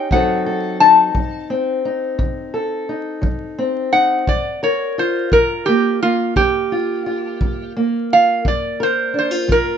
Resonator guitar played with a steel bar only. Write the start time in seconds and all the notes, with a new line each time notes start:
Already playing: G5
0.12 F#5
0.80 A5
3.93 F#5
4.29 D5
4.64 C#5
4.99 C5
5.33 A#4
5.66 G4
6.02 F4
6.37 G4
8.13 F5
8.48 D5
8.83 C5
9.19 C5
9.52 A#4